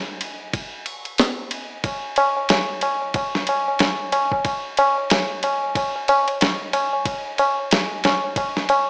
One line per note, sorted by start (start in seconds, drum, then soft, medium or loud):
0.21 ride medium
0.53 kick loud
0.53 ride medium
0.86 ride medium
1.05 ride soft
1.18 snare loud
1.18 ride medium
1.51 ride medium
1.84 kick loud
1.84 ride medium
1.84 tabla na medium
2.16 ride medium
2.16 tabla na medium
2.37 tabla na soft
2.49 snare loud
2.49 ride medium
2.49 tabla na soft
2.81 ride medium
2.81 tabla na medium
3.02 tabla na soft
3.14 kick loud
3.14 ride medium
3.14 tabla na medium
3.35 snare soft
3.35 tabla na soft
3.47 ride medium
3.47 tabla na medium
3.68 tabla na soft
3.79 snare loud
3.79 ride medium
3.79 tabla na medium
4.12 ride medium
4.12 tabla na loud
4.32 kick medium
4.32 tabla na soft
4.45 kick loud
4.45 ride medium
4.45 tabla na soft
4.77 ride medium
4.77 tabla na loud
4.98 tabla na soft
5.10 snare loud
5.10 ride medium
5.10 tabla na medium
5.43 ride medium
5.43 tabla na medium
5.63 tabla na soft
5.75 kick loud
5.75 ride medium
5.75 tabla na medium
5.96 tabla na soft
6.08 ride medium
6.08 tabla na loud
6.28 ride soft
6.28 tabla na soft
6.41 snare loud
6.41 ride medium
6.41 tabla na soft
6.73 ride medium
6.73 tabla na loud
6.93 tabla na soft
7.05 kick loud
7.05 ride medium
7.05 tabla na medium
7.38 ride medium
7.38 tabla na medium
7.60 tabla na soft
7.71 snare loud
7.71 ride medium
7.71 tabla na soft
8.04 snare loud
8.04 ride medium
8.04 tabla na medium
8.24 tabla na soft
8.36 kick loud
8.36 ride medium
8.36 tabla na medium
8.57 snare soft
8.57 tabla na soft
8.69 ride medium
8.69 tabla na medium